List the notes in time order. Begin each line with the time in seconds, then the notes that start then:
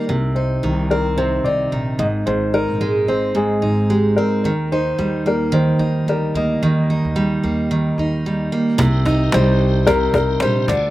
Already playing: G3 A#3 D#4 A#4
0.09 C2 C3
0.35 D#4 C5
0.63 C2 D#3
0.91 C4 A#4
1.17 C3 C5
1.44 C2 D#4 D5
1.72 A#1 D#3
1.99 G#1 G#2 D#5
2.26 G#1 G#2 C5
2.54 D#4 A#4
2.68 A#1
2.81 G#3
3.07 G#1 C4 C5
3.35 G#2 G#4
3.62 G#1 D#4
3.90 G#3 G4
4.16 C4 A#4
4.44 D#2 D#3
4.72 D#4 C5
4.98 D#2 G3
5.26 A#3 A#4
5.52 D#3 C5
5.79 D#2 D#4
6.06 D2 G3 A#4
6.34 D2 A#3 D#5
6.62 D#2 D#3
6.90 D#4
7.05 D#2
7.16 G3
7.43 D#2 A#3
7.71 D#3
7.98 D#2 D#4
8.26 G3
8.52 A#3
8.78 C2 C3 C4 D#4 A#4, cajon bass
9.05 D#4, cajon bass
9.32 C2 G3 C5, cajon slap
9.60 cajon slap
9.87 C3 A#4, cajon bass
10.13 C2 A#4, cajon bass
10.40 A#1 G3 C5, cajon slap
10.67 D2 D3 D4 F4 G#4 D5, cajon bass